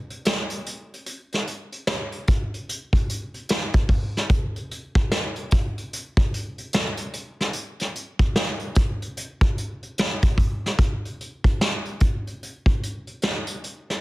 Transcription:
0.10 closed hi-hat
0.25 snare, closed hi-hat
0.50 closed hi-hat
0.66 closed hi-hat
0.94 closed hi-hat
1.06 closed hi-hat
1.32 snare, closed hi-hat
1.47 closed hi-hat
1.72 closed hi-hat
1.87 snare, closed hi-hat
2.12 closed hi-hat
2.27 kick, closed hi-hat
2.54 closed hi-hat
2.69 closed hi-hat
2.93 kick, closed hi-hat
3.09 closed hi-hat
3.34 closed hi-hat
3.49 snare, closed hi-hat
3.73 kick, closed hi-hat
3.89 kick, open hi-hat
4.17 snare, closed hi-hat
4.30 kick, closed hi-hat
4.56 closed hi-hat
4.71 closed hi-hat
4.95 kick, closed hi-hat
5.12 snare, closed hi-hat
5.36 closed hi-hat
5.51 kick, closed hi-hat
5.78 closed hi-hat
5.93 closed hi-hat
6.17 kick, closed hi-hat
6.34 closed hi-hat
6.58 closed hi-hat
6.73 snare, closed hi-hat
6.97 closed hi-hat
7.13 closed hi-hat
7.41 snare, closed hi-hat
7.53 closed hi-hat
7.80 snare, closed hi-hat
7.95 closed hi-hat
8.19 kick, closed hi-hat
8.36 snare, closed hi-hat
8.59 closed hi-hat
8.75 kick, closed hi-hat
9.02 closed hi-hat
9.17 closed hi-hat
9.41 kick, closed hi-hat
9.58 closed hi-hat
9.83 closed hi-hat
9.98 snare, closed hi-hat
10.22 kick, closed hi-hat
10.38 kick, closed hi-hat
10.66 snare, closed hi-hat
10.79 kick, closed hi-hat
11.05 closed hi-hat
11.21 closed hi-hat
11.44 kick, closed hi-hat
11.61 snare, closed hi-hat
11.85 closed hi-hat
12.00 kick, closed hi-hat
12.27 closed hi-hat
12.43 closed hi-hat
12.66 kick, closed hi-hat
12.83 closed hi-hat
13.07 closed hi-hat
13.22 snare, closed hi-hat
13.47 closed hi-hat
13.64 closed hi-hat
13.90 snare, closed hi-hat

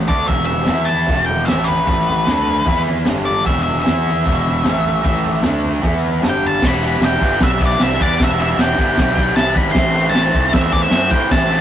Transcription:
0.08 D2 D3 A3 D4 D5, kick, floor tom
0.27 E1 E2 B2 E3 E5, kick, floor tom
0.46 E5, floor tom
0.66 E2 E3 B3 E4, snare, floor tom
0.85 A5, floor tom
1.07 E1 E2 B2 E3, kick, floor tom
1.26 G5, floor tom
1.45 A1 A2 E3 A3 E5, snare, floor tom
1.64 B4, floor tom
1.86 A1 A2 E3 A3, kick, floor tom
2.08 floor tom
2.26 D2 D3 A3 D4, snare, floor tom
2.47 floor tom
2.65 E2 E3 B3 E4, kick, floor tom
2.86 floor tom
3.05 G1 G2 D3 G3, snare, floor tom
3.25 D5, floor tom
3.45 E1 E2 B2 E3 E5, kick, floor tom
3.63 E5, floor tom
3.82 E3 B3 E5
3.86 E2 E4, snare, floor tom
4.07 floor tom
4.23 E1 E2 B2 E3, kick, floor tom
4.46 floor tom
4.63 A1 A2 E3 A3, snare, floor tom
4.85 floor tom
5.02 A1 A2 E3 A3, kick, floor tom
5.24 floor tom
5.41 D2 D3 A3 D4, snare, floor tom
5.64 floor tom
5.82 E2 E3 B3 E4, kick, floor tom
6.05 floor tom
6.21 G1 G2 D3 G3, snare, floor tom
6.29 G5
6.43 A5, floor tom
6.62 E1 E3 G3 B3 E4, kick, snare, crash
6.67 B5
6.82 E3 G3 B3 E4, ride
7.00 E1 E3 G3 B3 E4, snare, ride
7.05 G5
7.21 G1 E3 G3 B3 E4, kick, ride
7.40 B1 E3 G3 B3 E4 E5, kick, snare, ride
7.60 E3 G3 B3 E4, kick, ride
7.65 D5
7.80 C2 E3 G3 B3 E4 E5, snare, ride
8.00 E2 E3 G3 B3 E4 D5, kick, ride
8.19 E1 E3 G3 B3 E4, kick, snare, ride
8.24 E5
8.39 E3 G3 B3 E4 E5, ride
8.57 E1 E3 G3 B3 E4, snare, ride
8.61 G5
8.77 G1 E3 G3 B3 E4, kick, ride
8.97 B1 E3 G3 B3 E4, kick, snare, ride
9.15 E3 G3 B3 E4, kick, ride
9.35 C2 E3 G3 B3 E4 A5, snare, ride
9.53 G#1 E3 G3 B3 E4 B5, kick, ride
9.72 A2 C6, kick, snare, ride
9.76 A1 E3 A3 C4 E4
9.95 A2 E3 A3 C4 E4, ride
10.09 A1 A5
10.14 A2 E3 A3 C4 E4, snare, ride
10.33 C2 A2 E3 A3 C4 E4, kick, ride
10.53 E2 A2 E3 A3 C4 E4 E5, kick, snare, ride
10.71 A2 E3 A3 C4 E4 D5, kick, ride
10.82 E5
10.89 F#2 A2 E3 A3 C4 E4, snare, ride
11.10 A2 E3 A3 C4 E4 G5, kick, ride
11.29 A1 A2 E3 A3 C4 E4 A5, kick, snare, ride
11.48 A2 E3 A3 C4 E4, ride

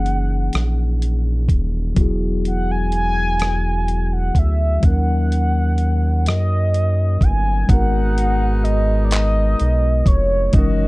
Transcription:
Already playing: F#1 E3 A#3 C#4 D#4 G#4 F#5
0.06 closed hi-hat
0.53 A#1, cross-stick, closed hi-hat
1.02 closed hi-hat
1.49 D#1, kick, closed hi-hat
1.95 E1 F#3 B3 F#4, kick, closed hi-hat
1.99 E4 G#4
2.45 F#5, closed hi-hat
2.71 G#5
2.92 G#5, closed hi-hat
3.40 cross-stick, closed hi-hat
3.88 closed hi-hat
4.07 G#5
4.13 F#5
4.35 D2 E5, kick, closed hi-hat
4.80 D#2 F#3 A#3 C#4, kick, closed hi-hat
4.84 D#4 A#4 F#5
5.32 closed hi-hat
5.78 closed hi-hat
6.26 F#2 D#5, cross-stick, closed hi-hat
6.74 closed hi-hat
7.21 G1 G#5, kick, closed hi-hat
7.67 G#1 B2 G#3 B3 D#4 F#5, kick, closed hi-hat
7.73 F#4 A#4
8.18 closed hi-hat
8.64 D#5, closed hi-hat
9.05 D5
9.11 D#5, clap, closed hi-hat
9.60 B1, closed hi-hat
10.06 F1 C#5, kick, closed hi-hat
10.52 F#1 D#3 G#3 C#4 D#4 F#4 D#5, kick, closed hi-hat
10.57 E3 A#4

